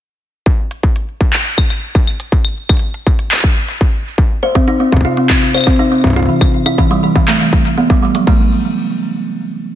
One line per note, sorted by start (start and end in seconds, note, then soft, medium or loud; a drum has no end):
0.46 kick loud
0.71 closed hi-hat medium
0.83 kick loud
0.96 closed hi-hat medium
1.21 kick loud
1.21 closed hi-hat medium
1.33 clap loud
1.45 closed hi-hat medium
1.58 kick loud
1.58 claves medium
1.70 closed hi-hat medium
1.70 claves soft
1.95 kick loud
2.07 claves soft
2.20 closed hi-hat medium
2.32 kick loud
2.45 claves soft
2.69 kick loud
2.69 closed hi-hat soft
2.69 claves medium
2.72 closed hi-hat soft
2.74 closed hi-hat soft
2.77 closed hi-hat medium
2.79 closed hi-hat medium
2.94 closed hi-hat medium
3.07 kick loud
3.19 closed hi-hat medium
3.31 clap loud
3.34 clap medium
3.36 clap medium
3.39 clap medium
3.41 kick loud
3.41 clap soft
3.41 closed hi-hat medium
3.69 closed hi-hat medium
3.81 kick loud
4.18 kick loud
4.18 closed hi-hat medium
4.43 4.51 C5 loud
4.55 4.63 C4 loud
4.55 kick loud
4.68 4.76 D#4 medium
4.68 closed hi-hat medium
4.80 4.88 C4 medium
4.92 5.00 C3 loud
4.92 kick loud
4.92 closed hi-hat soft
4.97 kick loud
5.01 kick medium
5.05 5.10 F4 loud
5.17 5.29 C4 medium
5.17 closed hi-hat medium
5.30 kick loud
5.30 clap loud
5.42 closed hi-hat medium
5.54 5.62 C5 medium
5.54 claves soft
5.58 claves soft
5.61 claves medium
5.64 5.75 C4 loud
5.64 kick loud
5.64 closed hi-hat soft
5.64 claves medium
5.70 closed hi-hat soft
5.73 closed hi-hat soft
5.76 5.87 D#4 loud
5.76 closed hi-hat medium
5.92 6.00 C4 medium
6.04 6.12 C3 loud
6.04 kick loud
6.07 kick medium
6.10 kick medium
6.13 kick medium
6.16 6.21 F4 loud
6.16 kick soft
6.16 closed hi-hat medium
6.19 kick soft
6.23 kick soft
6.26 6.41 E3 medium
6.26 kick soft
6.41 kick loud
6.41 claves soft
6.66 6.74 E4 loud
6.66 closed hi-hat medium
6.66 claves medium
6.78 6.86 E3 loud
6.78 kick loud
6.91 6.99 G3 loud
6.91 closed hi-hat medium
7.03 7.11 E3 medium
7.16 7.23 E3 loud
7.16 kick loud
7.16 closed hi-hat medium
7.28 7.33 A3 loud
7.28 clap loud
7.40 7.52 E3 medium
7.40 closed hi-hat soft
7.53 kick loud
7.65 closed hi-hat medium
7.78 7.85 B3 loud
7.90 7.98 G3 medium
7.90 kick loud
8.02 8.14 G3 medium
8.15 8.23 F#3 medium
8.15 closed hi-hat medium
8.27 8.50 A3 medium
8.27 kick loud
8.27 crash medium